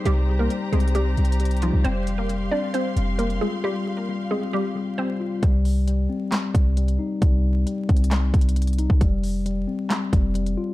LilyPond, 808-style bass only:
\new Staff \with { instrumentName = "808-style bass" } { \clef bass \time 4/4 \key c \minor \tempo 4 = 134 c,4 r8 c,4 c,4~ c,16 c,16 | f,,4. r4 f,,4 r8 | r1 | c,4. r4 c,4 r8 |
c,4 r8 c,4 c,4~ c,16 c,16 | f,,4. r4 f,,4 r8 | }